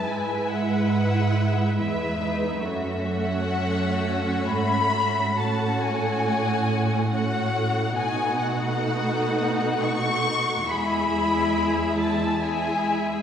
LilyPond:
<<
  \new Staff \with { instrumentName = "Violin section" } { \time 3/4 \key e \major \tempo 4 = 69 gis''8 fis''4. e''4 | r8 fis''4. b''4 | a''8 gis''4. fis''4 | gis''8 fis''4. cis'''4 |
b''4. a''8 gis''4 | }
  \new Staff \with { instrumentName = "Violin section" } { \time 3/4 \key e \major <b' e''>2 <b' e''>4 | <fis' e''>2. | <fis' fis''>2 <fis' fis''>4 | <fis' fis''>2. |
<gis' e''>2 <gis' e''>4 | }
  \new Staff \with { instrumentName = "Viola section" } { \time 3/4 \key e \major << { e'2 e'8 dis'8 | cis'2. | cis'2 cis'4 | dis'2. |
e'2 e'4 | } \\ { gis2 gis4 | a2. | a2 a4 | a2. |
gis2 gis4 | } >> }
  \new Staff \with { instrumentName = "Cello section" } { \clef bass \time 3/4 \key e \major gis,2 e,4 | fis,2 gis,4 | a,2. | b,2. |
e,2. | }
>>